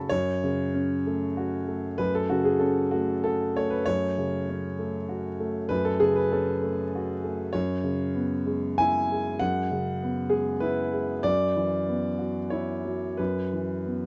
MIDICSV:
0, 0, Header, 1, 2, 480
1, 0, Start_track
1, 0, Key_signature, 3, "minor"
1, 0, Tempo, 626959
1, 86, Time_signature, 3, 2, 24, 8
1, 2484, Tempo, 616016
1, 9204, Tempo, 667408
1, 10781, End_track
2, 0, Start_track
2, 0, Title_t, "Grand piano"
2, 0, Program_c, 0, 0
2, 0, Control_c, 0, 64, 127
2, 0, Note_on_c, 0, 49, 37
2, 0, Note_on_c, 0, 57, 33
2, 0, Note_on_c, 0, 61, 27
2, 0, Note_on_c, 0, 66, 57
2, 0, Note_on_c, 0, 69, 68
2, 0, Note_on_c, 0, 73, 40
2, 0, Note_on_c, 0, 81, 34
2, 0, Note_on_c, 0, 83, 36
2, 0, Note_on_c, 0, 85, 44
2, 73, Note_off_c, 0, 73, 0
2, 73, Note_on_c, 0, 73, 109
2, 82, Note_off_c, 0, 69, 0
2, 86, Note_off_c, 0, 81, 0
2, 86, Note_on_c, 0, 42, 63
2, 100, Control_c, 0, 64, 0
2, 101, Note_off_c, 0, 49, 0
2, 102, Note_off_c, 0, 66, 0
2, 103, Note_off_c, 0, 57, 0
2, 103, Note_off_c, 0, 61, 0
2, 103, Note_off_c, 0, 83, 0
2, 105, Note_off_c, 0, 85, 0
2, 209, Control_c, 0, 64, 127
2, 335, Note_on_c, 0, 49, 51
2, 569, Note_on_c, 0, 61, 44
2, 722, Note_off_c, 0, 49, 0
2, 816, Note_on_c, 0, 57, 45
2, 957, Note_off_c, 0, 61, 0
2, 1049, Note_on_c, 0, 66, 56
2, 1196, Note_off_c, 0, 57, 0
2, 1285, Note_on_c, 0, 57, 43
2, 1431, Note_off_c, 0, 66, 0
2, 1498, Note_off_c, 0, 42, 0
2, 1515, Note_on_c, 0, 71, 96
2, 1522, Note_off_c, 0, 73, 0
2, 1525, Note_on_c, 0, 42, 60
2, 1541, Control_c, 0, 64, 0
2, 1640, Note_off_c, 0, 71, 0
2, 1645, Note_on_c, 0, 69, 82
2, 1667, Note_off_c, 0, 57, 0
2, 1689, Control_c, 0, 64, 127
2, 1757, Note_on_c, 0, 66, 80
2, 1764, Note_off_c, 0, 69, 0
2, 1769, Note_on_c, 0, 49, 51
2, 1873, Note_on_c, 0, 68, 65
2, 1880, Note_off_c, 0, 66, 0
2, 1986, Note_on_c, 0, 69, 75
2, 1997, Note_on_c, 0, 61, 40
2, 1998, Note_off_c, 0, 68, 0
2, 2150, Note_off_c, 0, 49, 0
2, 2229, Note_on_c, 0, 66, 71
2, 2236, Note_off_c, 0, 69, 0
2, 2244, Note_on_c, 0, 57, 44
2, 2386, Note_off_c, 0, 61, 0
2, 2477, Note_on_c, 0, 69, 83
2, 2478, Note_off_c, 0, 66, 0
2, 2492, Note_on_c, 0, 66, 52
2, 2630, Note_off_c, 0, 57, 0
2, 2722, Note_off_c, 0, 69, 0
2, 2734, Note_on_c, 0, 73, 89
2, 2743, Note_on_c, 0, 57, 41
2, 2842, Note_on_c, 0, 71, 73
2, 2849, Note_off_c, 0, 73, 0
2, 2872, Note_off_c, 0, 66, 0
2, 2930, Note_off_c, 0, 42, 0
2, 2960, Note_on_c, 0, 73, 105
2, 2962, Note_off_c, 0, 71, 0
2, 2978, Control_c, 0, 64, 0
2, 2978, Note_on_c, 0, 42, 57
2, 3110, Control_c, 0, 64, 127
2, 3115, Note_off_c, 0, 57, 0
2, 3212, Note_on_c, 0, 49, 46
2, 3457, Note_on_c, 0, 61, 46
2, 3584, Note_off_c, 0, 49, 0
2, 3688, Note_on_c, 0, 57, 43
2, 3827, Note_off_c, 0, 61, 0
2, 3920, Note_on_c, 0, 66, 50
2, 4066, Note_off_c, 0, 57, 0
2, 4163, Note_on_c, 0, 57, 46
2, 4305, Note_off_c, 0, 66, 0
2, 4375, Note_off_c, 0, 42, 0
2, 4388, Note_on_c, 0, 71, 97
2, 4397, Note_off_c, 0, 73, 0
2, 4399, Note_on_c, 0, 42, 64
2, 4412, Control_c, 0, 64, 0
2, 4513, Note_on_c, 0, 69, 79
2, 4514, Note_off_c, 0, 71, 0
2, 4536, Control_c, 0, 64, 127
2, 4548, Note_off_c, 0, 57, 0
2, 4630, Note_on_c, 0, 68, 89
2, 4638, Note_off_c, 0, 69, 0
2, 4640, Note_on_c, 0, 49, 46
2, 4754, Note_on_c, 0, 71, 72
2, 4757, Note_off_c, 0, 68, 0
2, 4879, Note_off_c, 0, 71, 0
2, 4879, Note_on_c, 0, 69, 65
2, 4887, Note_on_c, 0, 61, 46
2, 5027, Note_off_c, 0, 49, 0
2, 5120, Note_on_c, 0, 57, 39
2, 5121, Note_off_c, 0, 69, 0
2, 5267, Note_off_c, 0, 61, 0
2, 5372, Note_on_c, 0, 66, 50
2, 5499, Note_off_c, 0, 57, 0
2, 5597, Note_on_c, 0, 57, 41
2, 5742, Note_off_c, 0, 66, 0
2, 5799, Note_off_c, 0, 42, 0
2, 5820, Note_on_c, 0, 73, 91
2, 5832, Note_off_c, 0, 57, 0
2, 5835, Note_on_c, 0, 42, 61
2, 5845, Control_c, 0, 64, 0
2, 5977, Control_c, 0, 64, 127
2, 6063, Note_on_c, 0, 49, 43
2, 6302, Note_on_c, 0, 59, 43
2, 6456, Note_off_c, 0, 49, 0
2, 6552, Note_on_c, 0, 56, 45
2, 6706, Note_off_c, 0, 59, 0
2, 6797, Note_on_c, 0, 80, 108
2, 6804, Note_off_c, 0, 73, 0
2, 6814, Note_on_c, 0, 64, 50
2, 6950, Note_off_c, 0, 56, 0
2, 7061, Note_on_c, 0, 56, 49
2, 7191, Note_off_c, 0, 64, 0
2, 7253, Note_off_c, 0, 42, 0
2, 7276, Note_off_c, 0, 80, 0
2, 7276, Note_on_c, 0, 78, 97
2, 7290, Note_on_c, 0, 42, 62
2, 7295, Control_c, 0, 64, 0
2, 7430, Note_off_c, 0, 56, 0
2, 7431, Control_c, 0, 64, 127
2, 7526, Note_on_c, 0, 49, 50
2, 7766, Note_on_c, 0, 59, 43
2, 7907, Note_off_c, 0, 49, 0
2, 7978, Note_on_c, 0, 68, 68
2, 7991, Note_on_c, 0, 56, 41
2, 7996, Note_off_c, 0, 78, 0
2, 8145, Note_off_c, 0, 59, 0
2, 8219, Note_on_c, 0, 71, 86
2, 8227, Note_off_c, 0, 68, 0
2, 8229, Note_on_c, 0, 64, 52
2, 8376, Note_off_c, 0, 56, 0
2, 8474, Note_on_c, 0, 56, 41
2, 8617, Note_off_c, 0, 64, 0
2, 8690, Note_off_c, 0, 42, 0
2, 8707, Note_on_c, 0, 74, 97
2, 8708, Note_off_c, 0, 71, 0
2, 8714, Note_on_c, 0, 42, 59
2, 8716, Note_off_c, 0, 56, 0
2, 8730, Control_c, 0, 64, 0
2, 8879, Control_c, 0, 64, 127
2, 8963, Note_on_c, 0, 52, 46
2, 9211, Note_on_c, 0, 59, 38
2, 9345, Note_off_c, 0, 52, 0
2, 9432, Note_on_c, 0, 66, 42
2, 9578, Note_off_c, 0, 59, 0
2, 9661, Note_on_c, 0, 73, 70
2, 9664, Note_off_c, 0, 74, 0
2, 9672, Note_on_c, 0, 64, 44
2, 9809, Note_off_c, 0, 66, 0
2, 9909, Note_on_c, 0, 54, 41
2, 10055, Note_off_c, 0, 64, 0
2, 10123, Note_off_c, 0, 42, 0
2, 10143, Note_on_c, 0, 71, 68
2, 10149, Note_off_c, 0, 73, 0
2, 10157, Note_on_c, 0, 42, 51
2, 10168, Control_c, 0, 64, 0
2, 10279, Control_c, 0, 64, 127
2, 10303, Note_off_c, 0, 54, 0
2, 10400, Note_on_c, 0, 52, 35
2, 10633, Note_on_c, 0, 59, 33
2, 10781, Note_off_c, 0, 42, 0
2, 10781, Note_off_c, 0, 52, 0
2, 10781, Note_off_c, 0, 59, 0
2, 10781, Note_off_c, 0, 71, 0
2, 10781, End_track
0, 0, End_of_file